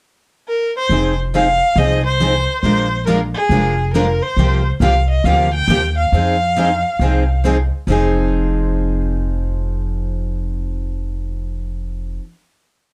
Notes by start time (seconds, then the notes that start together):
0.48 A#4
0.77 C5
0.89 F1 F3 C4 D#4 G#4
1.34 F3 C4 D#4 G#4 F5
1.76 C2 F3 C4 D#4 G#4 D#5
2.06 C5
2.21 F3 C4 D#4 G#4
2.62 A#1 F3 G#3 D4 F4 A#4 C5
3.06 F3 G#3 D4 F4 A#4
3.34 G#4
3.49 F1 F3 G#3 D4 F4 A#4
3.94 F3 G#3 D4 F4 A#4
4.22 C5
4.37 C2 C3 F3 A#3 F4 G4
4.80 C2 C3 F3 A#3 F4 G4 F5
5.10 D#5
5.24 D2 C3 F3 A#3 F4 G4 F5
5.54 G5
5.68 D#2 C3 F3 A#3 F4 G4
5.98 F5
6.12 F2 F3 C4 D#4 G#4
6.57 F3 C4 D#4 G#4
6.99 C2 F3 C4 D#4 G#4
7.44 F3 C4 D#4 G#4
7.87 F1 F3 C4 D#4 G#4